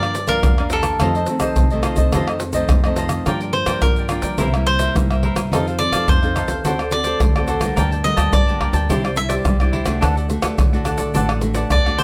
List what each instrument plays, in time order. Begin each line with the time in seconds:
Already playing: upright bass G2, nylon-string guitar G2 F3 A#3 D4, cavaquinho D5
0.03 cavaquinho A#4 D5 F5, pandeiro, tamborim, shaker
0.15 muted cavaquinho stroke, pandeiro, shaker
0.27 nylon-string guitar F3 A#3 D4, cavaquinho A#4 D5 F5, pandeiro, shaker, surdo
0.43 upright bass E2, nylon-string guitar D3, pandeiro, tamborim, shaker, surdo
0.58 nylon-string guitar A#3 D4, cavaquinho A#4 D5 F5, pandeiro, tamborim, shaker
0.70 cavaquinho G4 A4 A#4 D5, pandeiro, shaker
0.74 cavaquinho F5
0.83 pandeiro, tamborim, shaker, surdo
1.00 upright bass F2, nylon-string guitar F2 D#3 A3 C4, cavaquinho F4 A4 C5 D#5, pandeiro, tamborim, shaker, surdo
1.15 cavaquinho A4 C5 D#5, pandeiro, shaker
1.26 nylon-string guitar D#3 A3 C4, muted cavaquinho stroke, pandeiro, shaker
1.40 cavaquinho A4 C5 D#5, pandeiro, tamborim, shaker, surdo
1.56 upright bass C2, nylon-string guitar C3, pandeiro, shaker, surdo
1.70 nylon-string guitar D#3 A3 C4, cavaquinho A4 C5 D#5, pandeiro, shaker
1.83 cavaquinho F4 A4 C5 D#5, pandeiro, tamborim, shaker
1.96 upright bass C2, cavaquinho A4 C5 D#5, pandeiro, shaker, surdo
2.12 nylon-string guitar F2 D#3 A3 C4, upright bass F2, cavaquinho F4 A4 C5 D#5, pandeiro, tamborim, shaker, surdo
2.28 cavaquinho A4 C5 D#5, pandeiro, tamborim, shaker
2.40 muted cavaquinho stroke, pandeiro, shaker
2.53 nylon-string guitar D#3 A3 C4, cavaquinho A4 C5 D#5, pandeiro, shaker, surdo
2.69 upright bass F2, nylon-string guitar C3, pandeiro, tamborim, shaker, surdo
2.84 nylon-string guitar D#3 A3 C4, cavaquinho A4 C5 D#5, pandeiro, tamborim, shaker
2.96 cavaquinho F4 A4 C5 D#5, pandeiro, shaker
3.09 pandeiro, tamborim, shaker, surdo
3.26 upright bass G2, nylon-string guitar G2 F3 A#3 D4, cavaquinho F4 A#4 D5 G5, pandeiro, tamborim, shaker, surdo
3.41 cavaquinho A#4 D5 G5, pandeiro, shaker
3.53 cavaquinho C5, muted cavaquinho stroke, pandeiro
3.66 upright bass G2, nylon-string guitar F3 A#3 D4, cavaquinho A#4 D5 G5, pandeiro, tamborim, shaker
3.82 upright bass G2, nylon-string guitar D3, cavaquinho A#4, pandeiro, tamborim, shaker, surdo
3.96 cavaquinho D5 G5, pandeiro, shaker
4.01 cavaquinho A#4
4.09 nylon-string guitar F3 A#3 D4, cavaquinho F4 A#4 D5 G5, pandeiro, tamborim, shaker
4.22 upright bass G3, cavaquinho A#4 D5 G5, pandeiro, shaker
4.38 upright bass C2, nylon-string guitar C3 G3 A#3 E4, cavaquinho E4 A#4 C5 E5, pandeiro, shaker, surdo
4.54 nylon-string guitar G3 A#3 E4, cavaquinho A#4 C5 E5, pandeiro, tamborim, shaker
4.66 cavaquinho C5, muted cavaquinho stroke, pandeiro
4.79 cavaquinho A#4 C5 E5, pandeiro, shaker
4.95 upright bass C2, nylon-string guitar G2 G3 A#3 E4, pandeiro, tamborim, shaker, surdo
5.11 cavaquinho A#4 C5 E5, pandeiro, tamborim, shaker
5.23 cavaquinho E4 A#4 C5 E5, pandeiro
5.36 upright bass C2, pandeiro, tamborim, shaker
5.52 upright bass F2, nylon-string guitar F3 C4 D#4 A4, cavaquinho D#4 A4 C5 F5, pandeiro, tamborim, shaker, surdo
5.67 cavaquinho A4 C5 F5, pandeiro, shaker
5.79 nylon-string guitar C4 D#4 A4, cavaquinho D5, muted cavaquinho stroke, pandeiro, shaker
5.92 upright bass F2, cavaquinho A4 C5 F5, pandeiro, tamborim, shaker
6.08 upright bass F2, nylon-string guitar C3, cavaquinho C5, pandeiro, tamborim, shaker, surdo
6.22 nylon-string guitar C4 D#4 A4, cavaquinho A4 C5 F5, pandeiro, shaker
6.35 cavaquinho D#4 A4 C5 F5, pandeiro, tamborim, shaker
6.48 upright bass D#2, cavaquinho A4 C5 F5, pandeiro, shaker
6.65 upright bass D2, nylon-string guitar D3 C4 F#4 A4, cavaquinho F#4 A4 C5 D5, pandeiro, shaker, surdo
6.79 cavaquinho A4 C5 D5, pandeiro, tamborim, shaker
6.91 nylon-string guitar C4 F#4 A4, cavaquinho D5, muted cavaquinho stroke, pandeiro, shaker
7.04 cavaquinho A4 C5 D5, pandeiro, shaker
7.20 upright bass D2, nylon-string guitar A2, pandeiro, tamborim, shaker, surdo
7.36 nylon-string guitar C4 F#4 A4, cavaquinho A4 C5 D5, pandeiro, tamborim, shaker
7.48 cavaquinho F#4 A4 C5 D5, pandeiro, shaker
7.61 upright bass D2, nylon-string guitar D3 G3 A#3 D4 A#4, pandeiro, tamborim, shaker
7.76 upright bass D2, nylon-string guitar G2, cavaquinho A#4 D5 G5 A5, pandeiro, tamborim, shaker, surdo
7.91 cavaquinho D5 G5 A5, pandeiro, shaker
8.04 nylon-string guitar D3 G3 A#3 D4 A#4, cavaquinho D#5, muted cavaquinho stroke, pandeiro, shaker
8.17 upright bass D2, cavaquinho D5 G5 A5, pandeiro, tamborim, shaker
8.33 upright bass D2, nylon-string guitar G2, cavaquinho D5, pandeiro, tamborim, shaker, surdo
8.47 nylon-string guitar D3 G3 A#3 D4 A#4, cavaquinho D5 G5 A5, pandeiro, shaker
8.60 cavaquinho A#4 D5 G5 A5, pandeiro, tamborim, surdo
8.73 upright bass D2, cavaquinho D5 G5 A5, pandeiro, shaker
8.89 upright bass C2, nylon-string guitar C3 G3 D4 E4, cavaquinho E4 G4 C5 D5, pandeiro, shaker, surdo
9.04 cavaquinho G4 C5 D5, pandeiro, tamborim, shaker
9.16 nylon-string guitar G3 D4 E4, cavaquinho E5, muted cavaquinho stroke, pandeiro, shaker
9.29 cavaquinho G4 C5 D5, pandeiro, shaker
9.45 upright bass C2, nylon-string guitar G3, pandeiro, tamborim, shaker, surdo
9.60 nylon-string guitar G3 D4 E4, cavaquinho G4 C5 D5, pandeiro, tamborim, shaker
9.72 cavaquinho E4 G4 C5 D5, pandeiro
9.86 upright bass C2, nylon-string guitar A3 D4 F#4, pandeiro, tamborim, shaker
10.01 upright bass D2, nylon-string guitar D3, cavaquinho D4 A4 D5 F#5, pandeiro, tamborim, shaker, surdo
10.16 cavaquinho A4 D5 F#5, pandeiro, shaker
10.29 nylon-string guitar A3 D4 F#4, muted cavaquinho stroke, pandeiro, shaker
10.42 upright bass D2, cavaquinho A4 D5 F#5, pandeiro, tamborim, shaker
10.58 upright bass D2, nylon-string guitar A2, pandeiro, tamborim, shaker, surdo
10.73 nylon-string guitar A3 D4 F#4, cavaquinho A4 D5 F#5, pandeiro, shaker
10.85 cavaquinho D4 A4 D5 F#5, pandeiro, tamborim, shaker
10.98 upright bass D3, cavaquinho A4 D5 F#5, pandeiro, shaker
11.14 upright bass A1, nylon-string guitar D3 A3 D4 F#4, cavaquinho D4 A4 D5 F#5, pandeiro, shaker, surdo
11.29 cavaquinho A4 D5 F#5, pandeiro, tamborim, shaker
11.41 nylon-string guitar A3 D4 F#4, muted cavaquinho stroke, pandeiro, shaker
11.54 cavaquinho A4 D5 F#5, pandeiro, shaker
11.70 upright bass D2, nylon-string guitar A2, cavaquinho D5, pandeiro, tamborim, shaker, surdo
11.85 nylon-string guitar A3 D4 F#4, cavaquinho A4 D5 F#5, pandeiro, tamborim, shaker
11.97 cavaquinho D4 A4 C5 D5 F#5, pandeiro, shaker